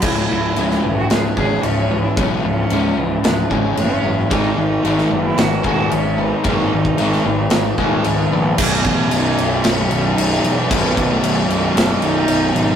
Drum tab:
CC |x---x---x---x---|x---x---x---x---|x---x---x---x---|x---x---x---x---|
SD |-----o--o-------|--------o-------|-----o--o-------|-----o--o-------|
BD |o---------o-----|o---------o-----|o---------o-----|o--o------o-----|

CC |x-x-x-x-x-x-x-x-|x-x-x-x-x-x-x-x-|
SD |--------o----o--|--------o-------|
BD |o-o-------------|o-o-------------|